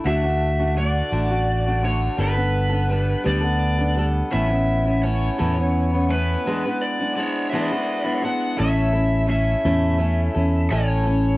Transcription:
0.04 fingered electric bass D2, steel-string acoustic guitar D3 A3 D4 F#4, electric slide guitar E5
0.23 steel-string acoustic guitar A3 D4 F#4
0.59 steel-string acoustic guitar A3 D4 F#4
0.75 steel-string acoustic guitar D3 A3 D4 F#4, electric slide guitar D5
1.11 fingered electric bass A1, steel-string acoustic guitar D3 A3 D4 F#4
1.30 steel-string acoustic guitar A3 D4 F#4
1.66 steel-string acoustic guitar A3 D4 F#4
1.81 steel-string acoustic guitar D3 A3 D4 F#4, electric slide guitar C#5
2.17 fingered electric bass G1, steel-string acoustic guitar G3 B3 D4 A4, electric slide guitar B4
2.35 steel-string acoustic guitar B3 D4 A4
2.70 steel-string acoustic guitar B3 D4 A4
2.89 steel-string acoustic guitar G3 B3 D4 A4
3.24 fingered electric bass D2, steel-string acoustic guitar G3 B3 D4 A4, electric slide guitar D5
3.41 steel-string acoustic guitar B3 D4 A4
3.79 steel-string acoustic guitar B3 D4 A4
3.96 steel-string acoustic guitar G3 B3 D4 A4
4.30 fingered electric bass A1, steel-string acoustic guitar A2 A3 B3 C#4 E4, electric slide guitar E5
4.49 steel-string acoustic guitar B3 C#4 E4
4.85 steel-string acoustic guitar B3 C#4 E4
5.03 steel-string acoustic guitar A3 B3 C#4 E4, electric slide guitar C#5
5.38 fingered electric bass E2, steel-string acoustic guitar A2 A3 B3 C#4 E4
5.57 steel-string acoustic guitar B3 C#4 E4
5.92 steel-string acoustic guitar B3 C#4 E4
6.08 steel-string acoustic guitar A3 B3 C#4 E4, electric slide guitar B4
6.46 steel-string acoustic guitar E2 E3 G#3 B3 D4 E4
6.65 steel-string acoustic guitar G#3 B3 D4 E4
6.81 electric slide guitar D5
6.99 steel-string acoustic guitar G#3 B3 D4 E4
7.16 steel-string acoustic guitar G#3 B3 D4 E4, electric slide guitar C#5 D5
7.50 steel-string acoustic guitar E2 E3 G#3, electric slide guitar D5 E5
7.54 steel-string acoustic guitar B3 D4 E4
7.70 steel-string acoustic guitar G#3 B3 D4 E4
8.03 steel-string acoustic guitar G#3 B3 D4 E4, electric slide guitar C#5
8.21 steel-string acoustic guitar G#3 B3 D4 E4, electric slide guitar F#5
8.57 fingered electric bass A1, steel-string acoustic guitar A2 A3 C#4 E4 A4, electric slide guitar E5
8.93 steel-string acoustic guitar C#4 E4 A4
9.27 steel-string acoustic guitar A3 C#4 E4 A4, electric slide guitar E5
9.65 fingered electric bass E2, steel-string acoustic guitar A2 A3 C#4 E4 A4
9.98 steel-string acoustic guitar A3 C#4 E4 A4
10.35 fingered electric bass E2, steel-string acoustic guitar C#4 E4 A4
10.70 fingered electric bass A1, steel-string acoustic guitar A2 A3 C#4 E4 A4, electric slide guitar C#5
11.04 steel-string acoustic guitar C#4 E4 A4

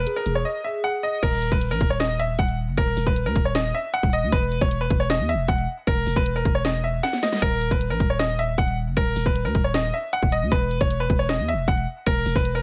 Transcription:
Already playing: grand piano B4
0.07 soft synth lead G#4, closed hi-hat
0.16 grand piano A#4
0.26 808-style bass E1, closed hi-hat
0.35 grand piano C#5
0.45 grand piano D#5
0.64 soft synth lead G#4, grand piano E5
0.84 grand piano F#5
1.03 grand piano D#5
1.23 808-style bass D#1, grand piano A#4, kick, closed hi-hat, crash
1.42 closed hi-hat
1.52 808-style bass D#1, grand piano B4, kick, closed hi-hat
1.61 closed hi-hat
1.71 808-style bass A#1, grand piano A#4
1.81 808-style bass D#1, kick, closed hi-hat
1.90 grand piano C#5
2.00 grand piano D#5, snare, closed hi-hat
2.19 grand piano E5, closed hi-hat
2.39 808-style bass D#1, grand piano F#5, kick, closed hi-hat
2.48 closed hi-hat
2.68 808-style bass F#1
2.77 808-style bass D#1, grand piano A#4, kick, closed hi-hat
2.97 808-style bass D#1, open hi-hat
3.07 808-style bass D#1, grand piano B4, kick
3.16 closed hi-hat
3.26 808-style bass D#2, grand piano A#4
3.36 808-style bass D#1, kick, closed hi-hat
3.45 grand piano C#5
3.55 grand piano D#5, snare, closed hi-hat
3.75 grand piano E5
3.94 grand piano F#5, closed hi-hat
4.03 808-style bass D#1, kick
4.13 grand piano D#5, closed hi-hat
4.23 808-style bass D#2
4.32 808-style bass E1, grand piano B4, kick, closed hi-hat
4.52 closed hi-hat
4.61 808-style bass E1, grand piano C#5, kick, closed hi-hat
4.71 closed hi-hat
4.81 grand piano B4
4.90 808-style bass E1, kick, closed hi-hat
5.00 grand piano C#5
5.10 grand piano D#5, snare, closed hi-hat
5.19 808-style bass E2
5.29 grand piano E5, closed hi-hat
5.34 808-style bass E1
5.48 808-style bass E1, grand piano F#5, kick, closed hi-hat
5.58 closed hi-hat
5.87 808-style bass E1, grand piano A#4, kick, closed hi-hat
6.07 808-style bass E1, open hi-hat
6.16 808-style bass E1, grand piano B4, kick
6.26 closed hi-hat
6.36 grand piano A#4
6.45 808-style bass E1, kick, closed hi-hat
6.55 grand piano C#5
6.65 grand piano D#5, snare, closed hi-hat
6.84 grand piano E5
7.03 grand piano F#5, snare, closed hi-hat
7.13 snare
7.23 grand piano D#5, snare, closed hi-hat
7.33 snare
7.42 808-style bass D#1, grand piano A#4, kick, closed hi-hat
7.62 closed hi-hat
7.71 808-style bass D#1, grand piano B4, kick, closed hi-hat
7.81 closed hi-hat
7.90 808-style bass A#1, grand piano A#4
8.00 808-style bass D#1, kick, closed hi-hat
8.10 grand piano C#5
8.19 grand piano D#5, snare, closed hi-hat
8.39 grand piano E5, closed hi-hat
8.58 808-style bass D#1, grand piano F#5, kick, closed hi-hat
8.68 closed hi-hat
8.87 808-style bass F#1
8.97 808-style bass D#1, grand piano A#4, kick, closed hi-hat
9.16 808-style bass D#1, open hi-hat
9.26 808-style bass D#1, grand piano B4, kick
9.36 closed hi-hat
9.45 808-style bass D#2, grand piano A#4
9.55 808-style bass D#1, kick, closed hi-hat
9.64 grand piano C#5
9.74 grand piano D#5, snare, closed hi-hat
9.94 grand piano E5
10.13 grand piano F#5, closed hi-hat
10.23 808-style bass D#1, kick
10.32 grand piano D#5, closed hi-hat
10.42 808-style bass D#2
10.52 808-style bass E1, grand piano B4, kick, closed hi-hat
10.71 closed hi-hat
10.81 808-style bass E1, grand piano C#5, kick, closed hi-hat
10.90 closed hi-hat
11.00 grand piano B4
11.10 808-style bass E1, kick, closed hi-hat
11.19 grand piano C#5
11.29 grand piano D#5, snare, closed hi-hat
11.39 808-style bass E2
11.48 grand piano E5, closed hi-hat
11.53 808-style bass E1
11.68 808-style bass E1, grand piano F#5, kick, closed hi-hat
11.78 closed hi-hat
12.06 808-style bass E1, grand piano A#4, kick, closed hi-hat
12.26 808-style bass E1, open hi-hat
12.36 808-style bass E1, grand piano B4, kick
12.45 closed hi-hat
12.55 grand piano A#4

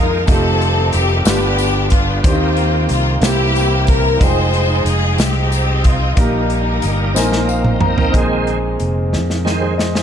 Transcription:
Already playing: fingered electric bass F2, grand piano A#2 A#3 D#4 F4 G#4, tonewheel organ D#3 G#3 A#3 F4, string section D#4 F4 A#4
0.26 fingered electric bass F1, tonewheel organ D#3 G3 A3 F4, grand piano A3 D#4 F4 G4, string section C4 D#4 A4, kick, closed hi-hat, tambourine
0.62 closed hi-hat
0.93 fingered electric bass F1, string section G4, closed hi-hat, tambourine
1.24 fingered electric bass G1, grand piano G2 B3 D4 F4 G4, tonewheel organ D3 G3 B3 F4, string section B3 D4 G4, snare, closed hi-hat, tambourine
1.58 closed hi-hat, tambourine
1.90 string section F4, kick, closed hi-hat
2.23 fingered electric bass D#2, grand piano D#3 A#3 C4 D4 G4, tonewheel organ D#3 A#3 C4 G4, string section F4, kick, closed hi-hat, tambourine
2.27 string section A#3 C4
2.32 grand piano D#4
2.57 closed hi-hat
2.89 fingered electric bass C2, string section F4, closed hi-hat, tambourine
3.21 fingered electric bass C2, grand piano C3 A#3 C4 E4 G4, tonewheel organ E3 A#3 C4 G4, string section A#3 E4 G4, snare, closed hi-hat, tambourine
3.55 closed hi-hat, tambourine
3.87 string section A#4, kick, closed hi-hat
4.17 fingered electric bass F1, grand piano G3 D#4, tonewheel organ G#3 D#4 G5, kick, closed hi-hat
4.21 tonewheel organ F3, grand piano G#3 F4 G5, string section D#4 G#4 C5, tambourine
4.54 closed hi-hat
4.85 fingered electric bass F1, string section G#4, closed hi-hat, tambourine
5.18 fingered electric bass C2, string section C4 D#4 G4, snare, closed hi-hat, tambourine
5.52 closed hi-hat, tambourine
5.84 string section F4, kick, closed hi-hat
6.16 fingered electric bass A#1, grand piano A#2 A#3 D#4 G4 A#4, tonewheel organ G3 A#3 D#4 A#4, string section D#4, kick, closed hi-hat, tambourine
6.21 string section G3 A#3
6.50 closed hi-hat
6.82 fingered electric bass G1, closed hi-hat, tambourine
7.14 fingered electric bass A#1, grand piano A#2 C4 D#4 A#4 G#5, tonewheel organ A#3 C4 D#4 A#4, snare, tambourine
7.32 snare
7.48 grand piano F5, tambourine
7.64 mid tom
7.81 grand piano A#5, mid tom
7.98 floor tom
8.10 fingered electric bass A#1, grand piano A#2 C4 D#4, kick
8.14 tonewheel organ D#3 G#3 C4, french horn section G#3 A#3 C4 D#4, grand piano G#4 A#4, closed hi-hat
8.47 closed hi-hat
8.80 fingered electric bass F1, closed hi-hat
9.13 fingered electric bass F2, snare
9.30 snare
9.45 tonewheel organ D#3 G#3 C4, snare
9.61 grand piano G#4 C5
9.78 grand piano C5 D#5, snare
9.94 grand piano G#4 C5, snare

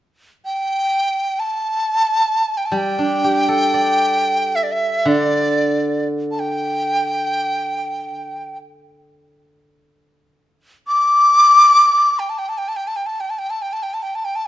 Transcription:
0.45 dizi G5
1.40 dizi A5
2.57 dizi G5
2.66 dizi A5
2.72 guzheng G3
2.78 dizi G5
2.99 guzheng D4
3.24 guzheng G4
3.48 guzheng A4
3.74 guzheng D5
4.55 dizi E5
4.63 dizi D5
4.72 dizi E5
5.05 guzheng D3, dizi D5
6.31 dizi A5
6.39 dizi G5
10.88 dizi D6
12.19 dizi G5
12.29 dizi A5
12.38 dizi G5
12.49 dizi A5
12.58 dizi G5
12.68 dizi A5
12.76 dizi G5
12.88 dizi A5
12.96 dizi G5
13.06 dizi A5
13.20 dizi G5
13.30 dizi A5
13.39 dizi G5
13.50 dizi A5
13.62 dizi G5
13.73 dizi A5
13.83 dizi G5
13.94 dizi A5
14.03 dizi G5
14.15 dizi A5
14.25 dizi G5
14.36 dizi A5

